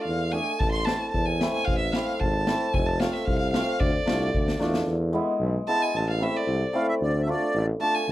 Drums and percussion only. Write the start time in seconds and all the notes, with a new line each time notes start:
0.60 kick, snare
0.87 snare
1.14 kick
1.41 snare
1.55 snare
1.68 kick
1.93 snare
2.08 snare
2.21 kick
2.47 snare
2.74 kick
3.00 snare
3.14 snare
3.28 kick
3.54 snare
3.81 kick
4.08 snare
4.34 kick
4.48 snare
4.61 snare
4.74 snare